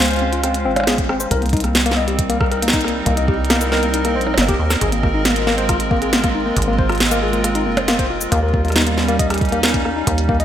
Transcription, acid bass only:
0.00 0.67 C#2 loud
0.65 1.27 G#1 medium
1.31 3.03 C2 loud
3.06 4.17 C2 loud
4.16 4.37 A#1 medium
4.38 4.55 G1 loud
4.59 4.77 D#2 medium
4.81 6.53 G#1 loud
6.57 7.68 G#1 loud
7.66 8.28 F1 medium
8.32 10.03 D#2 loud
10.07 10.45 D#2 loud

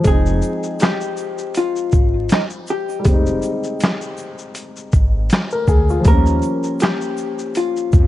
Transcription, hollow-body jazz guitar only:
0.07 0.77 G#4 loud
0.82 1.52 G4 loud
1.57 2.32 F4 loud
2.32 2.42 D#4 medium
2.70 4.90 G4 medium
6.08 6.82 A#4 loud
6.82 7.58 G4 loud
7.57 8.07 F4 medium

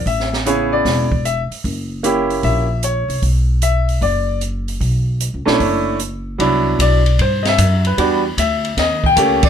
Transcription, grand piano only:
0.07 0.32 E5 medium
0.46 1.06 C#3 medium
0.46 1.06 B3 medium
0.46 1.07 E4 medium
0.46 1.07 G#4 medium
0.46 0.72 C#5 medium
0.73 1.21 D5 medium
1.25 1.41 E5 medium
2.03 2.64 A#3 medium
2.03 2.64 C#4 medium
2.03 2.65 E4 medium
2.03 2.65 G4 medium
2.44 2.81 E5 medium
2.84 3.20 C#5 medium
3.63 3.99 E5 medium
4.03 4.39 D5 medium
5.46 5.96 A3 medium
5.46 5.97 C#4 medium
5.46 5.97 D4 medium
5.46 5.97 E4 medium
6.38 7.00 F#3 medium
6.38 7.00 B3 medium
6.38 7.00 D4 medium
6.38 7.01 E4 medium
6.82 7.17 D5 medium
7.22 7.46 C5 medium
7.43 7.45 D#5 medium
7.49 7.84 E5 loud
7.87 8.23 B4 medium
7.98 8.22 G3 medium
7.98 8.22 B3 medium
7.98 8.22 D4 medium
7.98 8.22 F#4 medium
8.39 8.75 E5 medium
8.79 9.04 D#5 medium
9.06 9.42 G5 loud
9.16 9.40 A3 medium
9.16 9.41 A#3 medium
9.16 9.41 C#4 medium
9.16 9.41 G4 medium
9.44 9.49 D5 medium

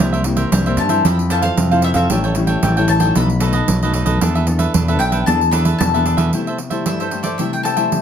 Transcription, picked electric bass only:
0.00 0.44 C2 medium
0.52 0.78 C2 medium
0.77 1.00 G2 medium
1.05 1.50 F2 medium
1.57 1.91 F2 medium
1.95 2.07 F2 medium
2.10 2.55 A1 medium
2.63 2.86 A1 medium
2.88 3.11 A1 medium
3.15 3.61 B1 loud
3.69 4.02 B1 medium
4.06 4.18 B1 medium
4.21 4.66 E2 medium
4.74 5.00 E2 medium
5.00 5.23 B1 medium
5.27 5.72 E2 medium
5.80 6.14 E2 medium
6.17 6.30 E2 medium

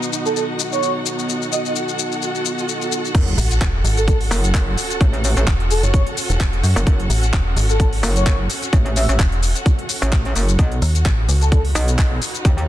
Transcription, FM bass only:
3.38 3.59 A1 loud
3.61 3.83 E1 loud
3.84 4.29 G#1 loud
5.47 5.81 E1 loud
5.83 6.04 F#1 loud
6.30 6.62 E1 loud
6.63 6.74 F#2 medium
7.10 7.32 A1 loud
7.33 7.55 E1 loud
7.56 8.01 G#1 loud
9.19 9.53 E1 loud
10.82 11.04 D#2 loud
11.05 11.27 A1 loud
11.29 11.73 C#2 loud

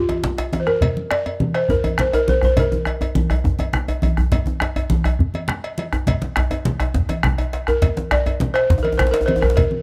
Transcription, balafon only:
0.00 0.49 F4 medium
0.60 0.67 C5 medium
0.67 1.12 A#4 medium
1.11 1.56 D5 medium
1.55 1.70 C5 medium
1.70 2.00 A#4 medium
2.00 2.13 C5 medium
2.14 2.29 A#4 medium
2.29 2.43 C5 medium
2.45 2.59 C5 medium
2.59 3.71 A#4 medium
7.68 7.95 A#4 medium
8.11 8.56 D5 medium
8.54 8.85 C5 medium
8.83 8.99 A#4 medium
8.98 9.12 C5 medium
9.11 9.27 A#4 medium
9.26 9.38 C5 medium
9.39 9.54 A#4 medium
9.39 9.43 C5 medium
9.56 9.82 A#4 medium

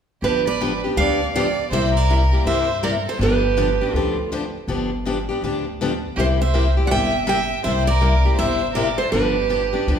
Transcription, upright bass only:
0.22 0.82 G1 medium
0.97 1.56 D2 medium
1.71 2.30 C2 medium
2.45 3.05 G2 medium
3.19 3.78 G1 medium
3.93 4.53 D2 medium
4.68 5.27 G1 medium
5.42 6.01 D2 medium
6.17 6.76 C2 medium
6.92 7.51 G1 medium
7.65 8.24 C2 medium
8.39 8.98 G1 medium
9.12 9.72 G1 medium
9.87 9.99 D2 medium

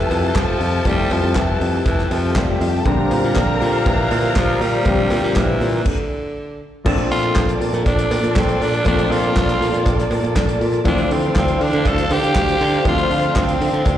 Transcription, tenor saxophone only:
0.00 0.39 E3 loud
0.37 0.89 F3 loud
0.87 1.14 G3 loud
1.12 1.39 F3 loud
1.37 1.87 E3 medium
1.87 2.14 E3 medium
2.12 2.39 F3 medium
2.37 2.74 G3 medium
3.37 3.89 D3 medium
3.87 4.39 E3 loud
4.37 4.64 F3 medium
4.62 5.38 G3 loud
5.37 5.89 E3 loud
5.87 6.62 D3 medium
7.12 7.58 F4 loud
7.87 8.39 D4 medium
8.37 8.64 C4 medium
8.62 8.87 D4 medium
8.87 9.13 D4 loud
9.12 10.11 F4 loud
10.88 11.14 D4 medium
11.13 11.37 C4 medium
11.38 11.64 C4 medium
11.63 11.89 D4 medium
11.88 12.14 A4 loud
12.12 12.87 G4 loud
12.88 13.39 F4 loud
13.38 13.98 C4 medium

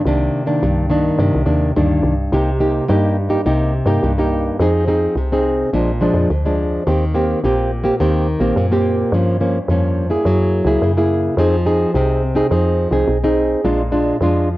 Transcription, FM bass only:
0.05 0.30 C2 loud
0.63 1.11 C2 medium
1.19 1.31 G2 medium
1.35 1.45 C2 medium
1.46 1.72 D#2 medium
1.76 2.02 D2 medium
2.03 2.29 C2 medium
2.32 2.81 C2 loud
2.89 3.38 G2 medium
3.46 3.82 C2 medium
3.86 3.99 G2 medium
4.03 4.51 C2 loud
4.59 5.08 F2 loud
5.16 5.64 C2 medium
5.73 6.09 A#1 medium
6.14 6.27 F2 medium
6.30 6.78 D2 medium
6.87 7.35 D#2 loud
7.44 7.91 A#1 medium
8.00 8.36 D#2 medium
8.40 8.53 A#1 medium
8.56 9.04 F#2 medium
9.12 9.60 G2 loud
9.68 10.17 F2 medium
10.25 10.61 F#2 medium
10.65 10.78 C#2 medium
10.82 11.30 F#2 medium
11.37 11.86 F2 loud
11.94 12.43 C2 medium
12.51 12.87 F2 medium
12.91 13.04 C2 medium
13.08 13.56 B1 loud
13.64 14.12 A#1 loud
14.21 14.57 F2 medium

